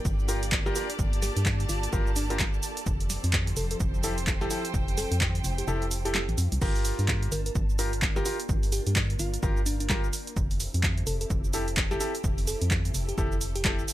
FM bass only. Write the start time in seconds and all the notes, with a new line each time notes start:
0.05 G1
0.99 G1
1.37 G2
1.69 G1
1.93 G1
2.86 F1
3.24 F2
3.57 F1
3.80 F1
4.74 F1
5.11 F2
5.44 F1
5.68 F1
6.29 A1
6.38 F2
6.52 C2
6.62 G1
6.99 G2
7.32 G1
7.55 G1
8.49 G1
8.87 G2
9.19 G1
9.43 G1
10.37 F1
10.74 F2
11.07 F1
11.30 F1
12.24 F1
12.62 F2
12.94 F1
13.18 F1